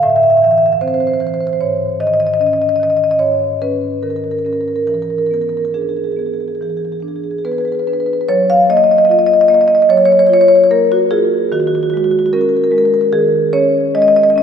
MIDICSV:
0, 0, Header, 1, 2, 480
1, 0, Start_track
1, 0, Key_signature, 6, "major"
1, 0, Tempo, 800000
1, 969, Time_signature, 4, 2, 24, 8
1, 1936, Tempo, 841515
1, 4816, Tempo, 809717
1, 8464, End_track
2, 0, Start_track
2, 0, Title_t, "Marimba"
2, 0, Program_c, 0, 12
2, 17, Note_on_c, 0, 76, 71
2, 18, Note_on_c, 0, 45, 56
2, 56, Note_off_c, 0, 76, 0
2, 56, Note_on_c, 0, 76, 54
2, 96, Note_off_c, 0, 76, 0
2, 96, Note_on_c, 0, 76, 63
2, 139, Note_off_c, 0, 76, 0
2, 139, Note_on_c, 0, 76, 55
2, 181, Note_off_c, 0, 76, 0
2, 181, Note_on_c, 0, 76, 60
2, 223, Note_off_c, 0, 76, 0
2, 223, Note_on_c, 0, 76, 59
2, 255, Note_on_c, 0, 52, 41
2, 265, Note_off_c, 0, 76, 0
2, 265, Note_on_c, 0, 76, 63
2, 305, Note_off_c, 0, 76, 0
2, 305, Note_on_c, 0, 76, 55
2, 346, Note_off_c, 0, 76, 0
2, 346, Note_on_c, 0, 76, 60
2, 394, Note_off_c, 0, 76, 0
2, 394, Note_on_c, 0, 76, 57
2, 435, Note_off_c, 0, 76, 0
2, 435, Note_on_c, 0, 76, 58
2, 474, Note_off_c, 0, 76, 0
2, 487, Note_on_c, 0, 72, 68
2, 491, Note_on_c, 0, 60, 42
2, 526, Note_off_c, 0, 72, 0
2, 526, Note_on_c, 0, 72, 54
2, 565, Note_off_c, 0, 72, 0
2, 565, Note_on_c, 0, 72, 59
2, 603, Note_off_c, 0, 72, 0
2, 603, Note_on_c, 0, 72, 51
2, 635, Note_off_c, 0, 52, 0
2, 642, Note_off_c, 0, 72, 0
2, 642, Note_on_c, 0, 72, 57
2, 681, Note_off_c, 0, 72, 0
2, 681, Note_on_c, 0, 72, 53
2, 721, Note_off_c, 0, 72, 0
2, 721, Note_on_c, 0, 72, 56
2, 730, Note_on_c, 0, 52, 38
2, 760, Note_off_c, 0, 72, 0
2, 760, Note_on_c, 0, 72, 55
2, 803, Note_off_c, 0, 72, 0
2, 803, Note_on_c, 0, 72, 57
2, 843, Note_off_c, 0, 72, 0
2, 843, Note_on_c, 0, 72, 55
2, 873, Note_off_c, 0, 60, 0
2, 882, Note_off_c, 0, 72, 0
2, 882, Note_on_c, 0, 72, 56
2, 918, Note_off_c, 0, 72, 0
2, 918, Note_on_c, 0, 72, 52
2, 946, Note_off_c, 0, 45, 0
2, 947, Note_off_c, 0, 72, 0
2, 964, Note_on_c, 0, 73, 59
2, 965, Note_on_c, 0, 44, 44
2, 969, Note_off_c, 0, 52, 0
2, 1196, Note_off_c, 0, 73, 0
2, 1200, Note_on_c, 0, 51, 41
2, 1202, Note_on_c, 0, 75, 69
2, 1242, Note_off_c, 0, 75, 0
2, 1242, Note_on_c, 0, 75, 57
2, 1282, Note_off_c, 0, 75, 0
2, 1282, Note_on_c, 0, 75, 61
2, 1320, Note_off_c, 0, 75, 0
2, 1320, Note_on_c, 0, 75, 56
2, 1360, Note_off_c, 0, 75, 0
2, 1360, Note_on_c, 0, 75, 58
2, 1402, Note_off_c, 0, 75, 0
2, 1402, Note_on_c, 0, 75, 58
2, 1439, Note_on_c, 0, 61, 36
2, 1446, Note_off_c, 0, 75, 0
2, 1446, Note_on_c, 0, 75, 57
2, 1480, Note_off_c, 0, 75, 0
2, 1480, Note_on_c, 0, 75, 54
2, 1520, Note_off_c, 0, 75, 0
2, 1520, Note_on_c, 0, 75, 58
2, 1570, Note_off_c, 0, 75, 0
2, 1570, Note_on_c, 0, 75, 55
2, 1590, Note_off_c, 0, 51, 0
2, 1614, Note_off_c, 0, 75, 0
2, 1614, Note_on_c, 0, 75, 57
2, 1654, Note_off_c, 0, 75, 0
2, 1654, Note_on_c, 0, 75, 52
2, 1680, Note_on_c, 0, 51, 35
2, 1699, Note_off_c, 0, 75, 0
2, 1699, Note_on_c, 0, 75, 61
2, 1740, Note_off_c, 0, 75, 0
2, 1740, Note_on_c, 0, 75, 53
2, 1781, Note_off_c, 0, 75, 0
2, 1781, Note_on_c, 0, 75, 58
2, 1822, Note_off_c, 0, 75, 0
2, 1822, Note_on_c, 0, 75, 53
2, 1833, Note_off_c, 0, 61, 0
2, 1867, Note_off_c, 0, 75, 0
2, 1867, Note_on_c, 0, 75, 63
2, 1908, Note_off_c, 0, 75, 0
2, 1910, Note_off_c, 0, 44, 0
2, 1915, Note_on_c, 0, 73, 65
2, 1916, Note_on_c, 0, 44, 42
2, 2070, Note_off_c, 0, 51, 0
2, 2149, Note_off_c, 0, 73, 0
2, 2159, Note_on_c, 0, 71, 60
2, 2160, Note_on_c, 0, 61, 39
2, 2389, Note_off_c, 0, 71, 0
2, 2392, Note_on_c, 0, 70, 53
2, 2396, Note_on_c, 0, 51, 32
2, 2435, Note_off_c, 0, 70, 0
2, 2435, Note_on_c, 0, 70, 42
2, 2469, Note_off_c, 0, 70, 0
2, 2469, Note_on_c, 0, 70, 45
2, 2514, Note_off_c, 0, 70, 0
2, 2514, Note_on_c, 0, 70, 41
2, 2540, Note_off_c, 0, 61, 0
2, 2556, Note_off_c, 0, 70, 0
2, 2556, Note_on_c, 0, 70, 45
2, 2596, Note_off_c, 0, 70, 0
2, 2596, Note_on_c, 0, 70, 44
2, 2633, Note_on_c, 0, 61, 34
2, 2640, Note_off_c, 0, 70, 0
2, 2640, Note_on_c, 0, 70, 44
2, 2678, Note_off_c, 0, 70, 0
2, 2678, Note_on_c, 0, 70, 44
2, 2723, Note_off_c, 0, 70, 0
2, 2723, Note_on_c, 0, 70, 44
2, 2763, Note_off_c, 0, 70, 0
2, 2763, Note_on_c, 0, 70, 41
2, 2782, Note_off_c, 0, 51, 0
2, 2808, Note_off_c, 0, 70, 0
2, 2808, Note_on_c, 0, 70, 46
2, 2850, Note_off_c, 0, 44, 0
2, 2858, Note_off_c, 0, 70, 0
2, 2874, Note_on_c, 0, 70, 55
2, 2875, Note_on_c, 0, 52, 40
2, 2879, Note_off_c, 0, 61, 0
2, 2915, Note_off_c, 0, 70, 0
2, 2915, Note_on_c, 0, 70, 43
2, 2960, Note_off_c, 0, 70, 0
2, 2960, Note_on_c, 0, 70, 48
2, 3005, Note_off_c, 0, 70, 0
2, 3005, Note_on_c, 0, 70, 42
2, 3051, Note_off_c, 0, 70, 0
2, 3051, Note_on_c, 0, 70, 48
2, 3098, Note_off_c, 0, 70, 0
2, 3098, Note_on_c, 0, 70, 46
2, 3125, Note_on_c, 0, 59, 32
2, 3140, Note_off_c, 0, 70, 0
2, 3140, Note_on_c, 0, 70, 50
2, 3184, Note_off_c, 0, 70, 0
2, 3184, Note_on_c, 0, 70, 44
2, 3228, Note_off_c, 0, 70, 0
2, 3228, Note_on_c, 0, 70, 47
2, 3273, Note_off_c, 0, 70, 0
2, 3273, Note_on_c, 0, 70, 45
2, 3318, Note_off_c, 0, 70, 0
2, 3318, Note_on_c, 0, 70, 46
2, 3349, Note_off_c, 0, 70, 0
2, 3370, Note_on_c, 0, 62, 31
2, 3371, Note_on_c, 0, 68, 41
2, 3411, Note_off_c, 0, 68, 0
2, 3411, Note_on_c, 0, 68, 31
2, 3455, Note_off_c, 0, 68, 0
2, 3455, Note_on_c, 0, 68, 35
2, 3499, Note_off_c, 0, 68, 0
2, 3499, Note_on_c, 0, 68, 34
2, 3517, Note_off_c, 0, 59, 0
2, 3542, Note_off_c, 0, 68, 0
2, 3542, Note_on_c, 0, 68, 35
2, 3583, Note_off_c, 0, 68, 0
2, 3583, Note_on_c, 0, 68, 34
2, 3613, Note_on_c, 0, 59, 29
2, 3626, Note_off_c, 0, 68, 0
2, 3626, Note_on_c, 0, 68, 35
2, 3667, Note_off_c, 0, 68, 0
2, 3667, Note_on_c, 0, 68, 32
2, 3709, Note_off_c, 0, 68, 0
2, 3709, Note_on_c, 0, 68, 34
2, 3749, Note_off_c, 0, 68, 0
2, 3749, Note_on_c, 0, 68, 33
2, 3759, Note_off_c, 0, 62, 0
2, 3791, Note_off_c, 0, 68, 0
2, 3791, Note_on_c, 0, 68, 36
2, 3830, Note_off_c, 0, 52, 0
2, 3832, Note_off_c, 0, 68, 0
2, 3832, Note_on_c, 0, 68, 33
2, 3864, Note_on_c, 0, 52, 35
2, 3873, Note_off_c, 0, 68, 0
2, 3873, Note_on_c, 0, 68, 36
2, 3916, Note_off_c, 0, 68, 0
2, 3916, Note_on_c, 0, 68, 32
2, 3956, Note_off_c, 0, 68, 0
2, 3956, Note_on_c, 0, 68, 35
2, 4000, Note_off_c, 0, 59, 0
2, 4003, Note_off_c, 0, 68, 0
2, 4003, Note_on_c, 0, 68, 33
2, 4044, Note_off_c, 0, 68, 0
2, 4044, Note_on_c, 0, 68, 34
2, 4090, Note_off_c, 0, 68, 0
2, 4090, Note_on_c, 0, 68, 31
2, 4103, Note_on_c, 0, 62, 35
2, 4134, Note_off_c, 0, 68, 0
2, 4134, Note_on_c, 0, 68, 34
2, 4179, Note_off_c, 0, 68, 0
2, 4179, Note_on_c, 0, 68, 33
2, 4223, Note_off_c, 0, 68, 0
2, 4223, Note_on_c, 0, 68, 35
2, 4266, Note_off_c, 0, 68, 0
2, 4266, Note_on_c, 0, 68, 31
2, 4307, Note_off_c, 0, 68, 0
2, 4307, Note_on_c, 0, 68, 35
2, 4343, Note_on_c, 0, 59, 33
2, 4344, Note_on_c, 0, 71, 58
2, 4350, Note_off_c, 0, 68, 0
2, 4350, Note_on_c, 0, 68, 33
2, 4382, Note_off_c, 0, 71, 0
2, 4382, Note_on_c, 0, 71, 44
2, 4391, Note_off_c, 0, 68, 0
2, 4391, Note_on_c, 0, 68, 36
2, 4420, Note_off_c, 0, 71, 0
2, 4420, Note_on_c, 0, 71, 50
2, 4433, Note_off_c, 0, 68, 0
2, 4433, Note_on_c, 0, 68, 34
2, 4460, Note_off_c, 0, 71, 0
2, 4460, Note_on_c, 0, 71, 44
2, 4475, Note_off_c, 0, 68, 0
2, 4475, Note_on_c, 0, 68, 34
2, 4486, Note_off_c, 0, 62, 0
2, 4500, Note_off_c, 0, 71, 0
2, 4500, Note_on_c, 0, 71, 47
2, 4515, Note_off_c, 0, 68, 0
2, 4515, Note_on_c, 0, 68, 35
2, 4541, Note_off_c, 0, 71, 0
2, 4541, Note_on_c, 0, 71, 48
2, 4556, Note_off_c, 0, 68, 0
2, 4586, Note_off_c, 0, 71, 0
2, 4586, Note_on_c, 0, 71, 52
2, 4591, Note_on_c, 0, 62, 32
2, 4621, Note_off_c, 0, 71, 0
2, 4621, Note_on_c, 0, 71, 46
2, 4659, Note_off_c, 0, 71, 0
2, 4659, Note_on_c, 0, 71, 47
2, 4694, Note_off_c, 0, 71, 0
2, 4694, Note_on_c, 0, 71, 44
2, 4726, Note_off_c, 0, 59, 0
2, 4734, Note_off_c, 0, 71, 0
2, 4734, Note_on_c, 0, 71, 49
2, 4778, Note_off_c, 0, 71, 0
2, 4778, Note_on_c, 0, 71, 44
2, 4798, Note_off_c, 0, 52, 0
2, 4801, Note_off_c, 0, 71, 0
2, 4822, Note_on_c, 0, 73, 84
2, 4823, Note_off_c, 0, 62, 0
2, 4825, Note_on_c, 0, 54, 57
2, 4941, Note_off_c, 0, 73, 0
2, 4947, Note_on_c, 0, 77, 81
2, 5063, Note_off_c, 0, 77, 0
2, 5065, Note_on_c, 0, 58, 48
2, 5067, Note_on_c, 0, 75, 82
2, 5108, Note_off_c, 0, 75, 0
2, 5108, Note_on_c, 0, 75, 69
2, 5149, Note_off_c, 0, 75, 0
2, 5149, Note_on_c, 0, 75, 67
2, 5194, Note_off_c, 0, 75, 0
2, 5194, Note_on_c, 0, 75, 63
2, 5235, Note_off_c, 0, 75, 0
2, 5235, Note_on_c, 0, 75, 74
2, 5275, Note_off_c, 0, 75, 0
2, 5275, Note_on_c, 0, 75, 68
2, 5300, Note_on_c, 0, 65, 43
2, 5313, Note_off_c, 0, 75, 0
2, 5313, Note_on_c, 0, 75, 68
2, 5357, Note_off_c, 0, 75, 0
2, 5357, Note_on_c, 0, 75, 66
2, 5402, Note_off_c, 0, 75, 0
2, 5402, Note_on_c, 0, 75, 70
2, 5445, Note_off_c, 0, 75, 0
2, 5445, Note_on_c, 0, 75, 63
2, 5446, Note_off_c, 0, 58, 0
2, 5489, Note_off_c, 0, 75, 0
2, 5489, Note_on_c, 0, 75, 73
2, 5532, Note_off_c, 0, 75, 0
2, 5532, Note_on_c, 0, 75, 69
2, 5540, Note_on_c, 0, 58, 47
2, 5568, Note_off_c, 0, 75, 0
2, 5568, Note_on_c, 0, 75, 69
2, 5606, Note_off_c, 0, 75, 0
2, 5606, Note_on_c, 0, 75, 64
2, 5647, Note_off_c, 0, 75, 0
2, 5647, Note_on_c, 0, 75, 70
2, 5685, Note_off_c, 0, 65, 0
2, 5689, Note_off_c, 0, 75, 0
2, 5689, Note_on_c, 0, 75, 68
2, 5733, Note_off_c, 0, 75, 0
2, 5733, Note_on_c, 0, 75, 66
2, 5760, Note_off_c, 0, 54, 0
2, 5760, Note_off_c, 0, 75, 0
2, 5775, Note_on_c, 0, 54, 56
2, 5778, Note_on_c, 0, 73, 90
2, 5822, Note_off_c, 0, 73, 0
2, 5822, Note_on_c, 0, 73, 73
2, 5870, Note_off_c, 0, 73, 0
2, 5870, Note_on_c, 0, 73, 80
2, 5911, Note_off_c, 0, 73, 0
2, 5911, Note_on_c, 0, 73, 71
2, 5924, Note_off_c, 0, 58, 0
2, 5952, Note_off_c, 0, 73, 0
2, 5952, Note_on_c, 0, 73, 78
2, 5996, Note_off_c, 0, 73, 0
2, 5996, Note_on_c, 0, 73, 75
2, 6013, Note_on_c, 0, 65, 50
2, 6037, Note_off_c, 0, 73, 0
2, 6037, Note_on_c, 0, 73, 80
2, 6082, Note_off_c, 0, 73, 0
2, 6082, Note_on_c, 0, 73, 75
2, 6125, Note_off_c, 0, 73, 0
2, 6125, Note_on_c, 0, 73, 80
2, 6167, Note_off_c, 0, 73, 0
2, 6167, Note_on_c, 0, 73, 69
2, 6215, Note_off_c, 0, 73, 0
2, 6215, Note_on_c, 0, 73, 76
2, 6238, Note_off_c, 0, 73, 0
2, 6257, Note_on_c, 0, 58, 48
2, 6259, Note_on_c, 0, 70, 79
2, 6378, Note_off_c, 0, 70, 0
2, 6382, Note_on_c, 0, 66, 69
2, 6399, Note_off_c, 0, 65, 0
2, 6495, Note_on_c, 0, 65, 48
2, 6495, Note_on_c, 0, 68, 79
2, 6500, Note_off_c, 0, 66, 0
2, 6641, Note_off_c, 0, 58, 0
2, 6712, Note_off_c, 0, 54, 0
2, 6727, Note_off_c, 0, 68, 0
2, 6737, Note_off_c, 0, 65, 0
2, 6738, Note_on_c, 0, 51, 64
2, 6741, Note_on_c, 0, 66, 72
2, 6786, Note_off_c, 0, 66, 0
2, 6786, Note_on_c, 0, 66, 59
2, 6830, Note_off_c, 0, 66, 0
2, 6830, Note_on_c, 0, 66, 63
2, 6875, Note_off_c, 0, 66, 0
2, 6875, Note_on_c, 0, 66, 56
2, 6922, Note_off_c, 0, 66, 0
2, 6922, Note_on_c, 0, 66, 60
2, 6964, Note_off_c, 0, 66, 0
2, 6964, Note_on_c, 0, 66, 59
2, 6986, Note_on_c, 0, 56, 44
2, 7006, Note_off_c, 0, 66, 0
2, 7006, Note_on_c, 0, 66, 62
2, 7048, Note_off_c, 0, 66, 0
2, 7048, Note_on_c, 0, 66, 55
2, 7090, Note_off_c, 0, 66, 0
2, 7090, Note_on_c, 0, 66, 59
2, 7135, Note_off_c, 0, 66, 0
2, 7135, Note_on_c, 0, 66, 56
2, 7178, Note_off_c, 0, 66, 0
2, 7178, Note_on_c, 0, 66, 59
2, 7201, Note_off_c, 0, 66, 0
2, 7219, Note_on_c, 0, 70, 71
2, 7221, Note_on_c, 0, 61, 44
2, 7268, Note_off_c, 0, 70, 0
2, 7268, Note_on_c, 0, 70, 60
2, 7314, Note_off_c, 0, 70, 0
2, 7314, Note_on_c, 0, 70, 59
2, 7359, Note_off_c, 0, 70, 0
2, 7359, Note_on_c, 0, 70, 55
2, 7365, Note_off_c, 0, 56, 0
2, 7401, Note_off_c, 0, 70, 0
2, 7401, Note_on_c, 0, 70, 60
2, 7444, Note_off_c, 0, 70, 0
2, 7444, Note_on_c, 0, 70, 58
2, 7449, Note_on_c, 0, 56, 47
2, 7486, Note_off_c, 0, 70, 0
2, 7486, Note_on_c, 0, 70, 61
2, 7530, Note_off_c, 0, 70, 0
2, 7530, Note_on_c, 0, 70, 55
2, 7579, Note_off_c, 0, 70, 0
2, 7579, Note_on_c, 0, 70, 63
2, 7601, Note_off_c, 0, 61, 0
2, 7623, Note_off_c, 0, 70, 0
2, 7623, Note_on_c, 0, 70, 56
2, 7673, Note_off_c, 0, 51, 0
2, 7678, Note_off_c, 0, 70, 0
2, 7690, Note_on_c, 0, 51, 56
2, 7691, Note_on_c, 0, 68, 75
2, 7838, Note_off_c, 0, 56, 0
2, 7925, Note_off_c, 0, 68, 0
2, 7931, Note_on_c, 0, 61, 47
2, 7931, Note_on_c, 0, 73, 84
2, 8165, Note_off_c, 0, 73, 0
2, 8177, Note_on_c, 0, 56, 52
2, 8179, Note_on_c, 0, 75, 86
2, 8221, Note_off_c, 0, 75, 0
2, 8221, Note_on_c, 0, 75, 70
2, 8257, Note_off_c, 0, 75, 0
2, 8257, Note_on_c, 0, 75, 78
2, 8306, Note_off_c, 0, 75, 0
2, 8306, Note_on_c, 0, 75, 72
2, 8319, Note_off_c, 0, 61, 0
2, 8348, Note_off_c, 0, 75, 0
2, 8348, Note_on_c, 0, 75, 72
2, 8388, Note_off_c, 0, 75, 0
2, 8388, Note_on_c, 0, 75, 65
2, 8422, Note_on_c, 0, 61, 48
2, 8433, Note_off_c, 0, 75, 0
2, 8433, Note_on_c, 0, 75, 76
2, 8464, Note_off_c, 0, 51, 0
2, 8464, Note_off_c, 0, 56, 0
2, 8464, Note_off_c, 0, 61, 0
2, 8464, Note_off_c, 0, 75, 0
2, 8464, End_track
0, 0, End_of_file